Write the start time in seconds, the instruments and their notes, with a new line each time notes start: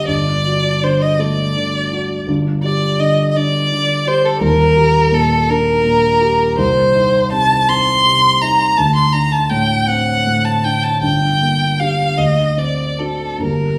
Already playing: grand piano D3 A#3 G4
0.07 grand piano G1 G2, violin D5
0.46 grand piano F#4
0.83 grand piano D3, violin C5
1.02 violin D#5
1.19 grand piano A3, violin D5
1.56 grand piano D3
1.93 grand piano F#4
2.27 grand piano G1 G2
2.64 grand piano G4, violin D5
3.00 grand piano D3, violin D#5
3.31 violin D#5
3.36 grand piano D4, violin D5
3.72 grand piano D3
4.07 grand piano G4, violin C5
4.25 violin A4
4.41 grand piano D#1 D#2, violin A#4
4.77 grand piano G4
5.12 grand piano A#2, violin A4
5.49 grand piano D4, violin A#4
5.84 grand piano A#2
6.21 grand piano G4
6.58 grand piano C2, violin C5
6.95 grand piano D#4
7.32 grand piano C3, violin A5
7.69 grand piano C4, violin C6
8.06 grand piano C3
8.42 grand piano D#4, violin A#5
8.77 grand piano D2, violin A5
8.96 violin C6
9.13 grand piano D4, violin A#5
9.32 violin A5
9.50 grand piano A2, violin G5
9.87 grand piano C4, violin F#5
10.26 grand piano A2
10.45 violin A5
10.64 grand piano D4, violin G5
10.84 violin A5
11.02 grand piano G1 G2, violin G5
11.41 grand piano A#3
11.79 grand piano D4 G4, violin F5
12.18 grand piano D2, violin D#5
12.57 grand piano C4, violin D5
12.99 grand piano D4 F#4, violin A4
13.38 grand piano G1 G2 A#3 D4 G4
13.44 violin A#4